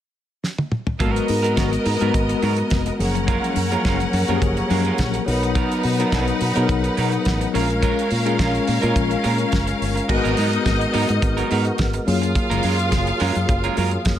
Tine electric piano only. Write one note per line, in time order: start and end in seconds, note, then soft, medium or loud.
1.00 1.27 G#3 medium
1.00 1.28 B3 medium
1.00 1.28 F#4 medium
1.00 1.28 A#4 medium
1.43 1.80 G#3 medium
1.43 1.80 B3 medium
1.43 1.80 F#4 medium
1.43 1.80 A#4 medium
2.01 2.74 G#3 medium
2.01 2.74 B3 medium
2.01 2.74 F#4 medium
2.01 2.74 A#4 medium
2.99 3.56 F3 medium
2.99 3.56 F#3 medium
2.99 3.56 A#3 medium
2.99 3.57 G#4 medium
3.71 4.08 F3 medium
3.71 4.07 F#3 medium
3.71 4.08 A#3 medium
3.71 4.08 G#4 medium
4.28 5.02 F3 medium
4.28 5.01 F#3 medium
4.28 5.01 A#3 medium
4.28 4.35 G4 medium
4.36 5.05 G#4 loud
5.26 5.83 F#3 medium
5.26 5.84 B3 medium
5.26 5.84 D#4 medium
5.26 5.84 A#4 medium
5.98 6.35 F#3 medium
5.98 6.35 B3 medium
5.98 6.35 D#4 medium
5.98 6.36 A#4 medium
6.55 7.28 F#3 medium
6.55 7.28 B3 medium
6.55 7.29 D#4 medium
6.55 6.62 G#4 medium
6.63 7.32 A#4 loud
7.53 8.10 G#3 medium
7.53 8.11 C#4 medium
7.53 8.11 F4 medium
7.53 8.11 A#4 loud
8.25 8.62 G#3 medium
8.25 8.62 C#4 medium
8.25 8.62 F4 medium
8.25 8.62 G#4 medium
8.82 9.55 G#3 medium
8.82 9.55 C#4 medium
8.82 9.55 F4 medium
8.82 9.56 A#4 medium
10.09 10.83 G#3 medium
10.09 10.83 B3 medium
10.09 10.84 F#4 medium
10.09 10.84 A#4 medium
12.07 12.98 F#3 medium
12.07 12.98 A#3 medium
12.07 12.98 F4 medium
12.07 12.98 G#4 medium